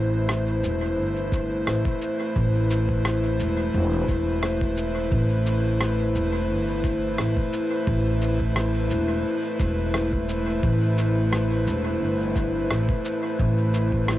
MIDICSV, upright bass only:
0, 0, Header, 1, 2, 480
1, 0, Start_track
1, 0, Key_signature, 0, "minor"
1, 0, Tempo, 689655
1, 1640, Time_signature, 4, 2, 24, 8
1, 9873, End_track
2, 0, Start_track
2, 0, Title_t, "Upright bass"
2, 0, Program_c, 0, 32
2, 0, Note_on_c, 0, 33, 90
2, 419, Note_off_c, 0, 33, 0
2, 440, Note_on_c, 0, 28, 73
2, 679, Note_off_c, 0, 28, 0
2, 679, Note_on_c, 0, 31, 80
2, 1138, Note_off_c, 0, 31, 0
2, 1160, Note_on_c, 0, 33, 73
2, 1273, Note_off_c, 0, 33, 0
2, 1642, Note_on_c, 0, 33, 92
2, 2340, Note_off_c, 0, 33, 0
2, 2361, Note_on_c, 0, 28, 76
2, 2574, Note_off_c, 0, 28, 0
2, 2603, Note_on_c, 0, 28, 91
2, 2815, Note_off_c, 0, 28, 0
2, 2842, Note_on_c, 0, 28, 78
2, 3540, Note_off_c, 0, 28, 0
2, 3562, Note_on_c, 0, 33, 90
2, 4259, Note_off_c, 0, 33, 0
2, 4281, Note_on_c, 0, 28, 74
2, 4520, Note_off_c, 0, 28, 0
2, 4520, Note_on_c, 0, 31, 78
2, 4979, Note_off_c, 0, 31, 0
2, 5001, Note_on_c, 0, 33, 72
2, 5114, Note_off_c, 0, 33, 0
2, 5479, Note_on_c, 0, 33, 91
2, 6178, Note_off_c, 0, 33, 0
2, 6201, Note_on_c, 0, 28, 76
2, 6414, Note_off_c, 0, 28, 0
2, 6679, Note_on_c, 0, 28, 74
2, 7378, Note_off_c, 0, 28, 0
2, 7400, Note_on_c, 0, 33, 94
2, 8099, Note_off_c, 0, 33, 0
2, 8119, Note_on_c, 0, 28, 77
2, 8361, Note_off_c, 0, 28, 0
2, 8361, Note_on_c, 0, 31, 78
2, 8819, Note_off_c, 0, 31, 0
2, 8839, Note_on_c, 0, 33, 74
2, 8953, Note_off_c, 0, 33, 0
2, 9322, Note_on_c, 0, 33, 94
2, 9873, Note_off_c, 0, 33, 0
2, 9873, End_track
0, 0, End_of_file